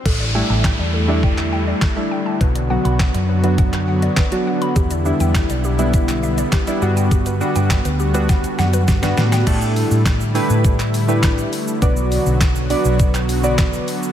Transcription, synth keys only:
\new Staff \with { instrumentName = "Synth keys" } { \time 4/4 \key a \mixolydian \tempo 4 = 102 r8 <g a d' e'>8. r8 <g a d' e'>8. r8. <g a d' e'>8. | r8 <fis b d' fis'>8. r8 <fis b d' fis'>8. r8. <fis b d' fis'>8. | r8 <g b d' e'>8. r8 <g b d' e'>8. r8. <g b d' e'>16 <g b d' fis'>8~ | <g b d' fis'>16 r16 <g b d' fis'>8. r8 <g b d' fis'>8. r8. <g b d' fis'>8. |
<a d' e' g' a'>8. r8. <a d' e' g' b'>8. r8 <a d' e' g' b'>8. r8 | <b d' fis' b' d''>8. r8. <b d' fis' b' d''>8. r8 <b d' fis' b' d''>8. r8 | }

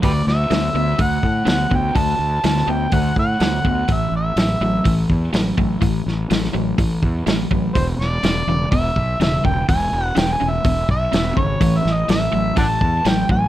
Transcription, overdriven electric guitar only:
\new Staff \with { instrumentName = "Overdriven electric guitar" } { \clef bass \time 4/4 \key a \major \tempo 4 = 124 <d a>4 <d b>8 <d b>8 <d a>4 <d b>8 <d b>8 | <d a>4 <d b>8 <d b>8 <d a>4 <d b>8 <d b>8 | <a, e>4 <a, fis>8 <a, fis>8 <a, e>4 <a, fis>8 <a, fis>8 | <a, e>4 <a, fis>8 <a, fis>8 <a, e>4 <a, fis>8 <a, fis>8 |
<e, b,>4 <e, cis>8 <e, cis>8 <e, b,>4 <e, cis>8 <e, cis>8 | <e, b,>4 <e, cis>8 <e, cis>8 <e, b,>4 <e, cis>8 <e, cis>8 | <a, e>4 <a, fis>8 <a, fis>8 <a, e>4 <a, fis>8 <a, fis>8 | }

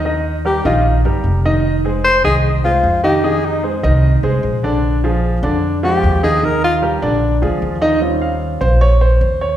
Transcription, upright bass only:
\new Staff \with { instrumentName = "Upright bass" } { \clef bass \time 4/4 \key ees \major \tempo 4 = 151 ees,4. bes,,4 g,,8 f,,4~ | f,,4. c,4. f,4~ | f,4. c,4 c,8 bes,,4~ | bes,,4. f,4. ees,4~ |
ees,4. bes,,4 d,8 ees,4~ | ees,4. bes,,4. ees,4 | }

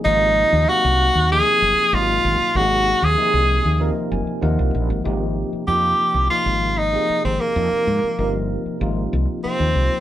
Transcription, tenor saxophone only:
\new Staff \with { instrumentName = "Tenor saxophone" } { \time 4/4 \key aes \mixolydian \tempo 4 = 96 ees'4 ges'4 aes'4 f'4 | ges'8. aes'4. r4. r16 | \key aes \major r4 g'4 f'8. ees'8. c'16 bes16~ | bes4~ bes16 r4. r16 c'4 | }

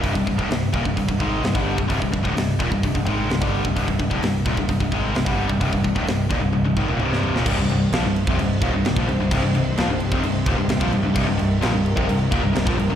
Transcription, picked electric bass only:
\new Staff \with { instrumentName = "Picked electric bass" } { \clef bass \time 4/4 \key c \minor \tempo 4 = 129 c,,16 c,,16 c,,16 d,,16 c,,8 ees,,16 c,,16 c,,16 c,,16 aes,,8 c,,16 g,,8 c,,16 | c,,16 c,,16 c,,16 d,,16 c,,8 ees,,16 c,,16 c,,16 c,,16 aes,,8 c,,16 g,,8 c,,16 | c,,16 c,,16 c,,16 d,,16 c,,8 ees,,16 c,,16 c,,16 c,,16 aes,,8 c,,16 g,,8 c,,16 | c,,16 c,,16 c,,16 d,,16 c,,8 ees,,16 c,,16 c,,16 c,,16 aes,,16 ees,,16 c,,8. ees,,16 |
c,,16 c,,16 c,,8 bes,,16 c,,8 f,,16 c,,8 ees,,16 c,,16 c,,16 bes,,16 c,,16 c,,16 | c,,16 c,,16 c,,8 bes,,16 c,,8 f,,16 c,,8 ees,,16 c,,16 c,,16 bes,,16 c,,16 c,,16 | c,,16 c,,16 c,,8 bes,,16 c,,8 f,,16 c,,8 ees,,16 c,,16 c,,16 bes,,16 c,,16 c,,16 | }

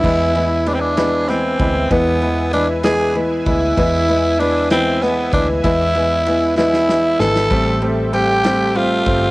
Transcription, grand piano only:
\new Staff \with { instrumentName = "Grand piano" } { \clef bass \time 6/8 \key e \phrygian \tempo 4. = 64 <e gis b>8 <e gis b>8 <e gis b>8 <e gis b>8 <e gis b>8 <e gis b>8 | <e gis b>8 <e gis b>8 <e gis b>8 <e gis b>8 <e gis b>8 <e gis b>8 | <e gis b>8 <e gis b>8 <e gis b>8 <e gis b>8 <e gis b>8 <e gis b>8 | <e gis b>8 <e gis b>8 <e gis b>8 <e gis b>8 <e gis b>8 <e gis b>8 |
<g a c'>8 <g a c'>8 <g a c'>8 <g a c'>8 <g a c'>8 <g a c'>8 | }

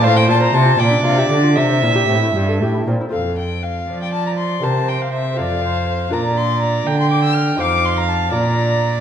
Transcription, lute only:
<<
  \new Staff \with { instrumentName = "Lute" } { \time 6/8 \key f \major \tempo 4. = 80 r16 c'16 f'16 c''16 c'16 f'16 r16 d'16 f'16 g'16 d'16 f'16 | r16 c'16 e'16 g'16 c'16 e'16 g'16 a'16 g'16 e'16 c'16 e'16 | <c' f' a'>2. | <c' g' bes'>4. <c' f' a'>4. |
<d' f' bes'>2. | <ees' f' c''>4. <d' f' d''>4. | }
  \new Staff \with { instrumentName = "Lute" } { \clef bass \time 6/8 \key f \major a,8 bes,8 c8 bes,8 c8 d8 | c8 bes,8 a,8 g,8 a,8 bes,8 | f,4. f4. | c4. f,4. |
bes,4. d4. | f,4. bes,4. | }
>>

